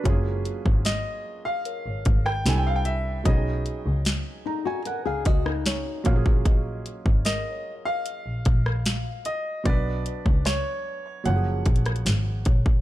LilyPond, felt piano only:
\new Staff \with { instrumentName = "Felt piano" } { \time 4/4 \key fis \major \tempo 4 = 75 << { <d' b'>16 r2. r8. | r4. ais''16 gis''16 fis''16 eis''16 dis''8 cis''8 eis''8 | r1 | r1 | } \\ { <fis gis ais cis' eis' gis'>2. <g c' d' e' a'>4 | <fis b cis' dis' gis'>2.~ <fis b cis' dis' gis'>8 <fis ais cis' eis' fis' gis'>8~ | <fis ais cis' eis' fis' gis'>2.~ <fis ais cis' eis' fis' gis'>8 r8 | <fis b d' b'>2 <eis fis ais cis' fis' gis'>2 | } >> }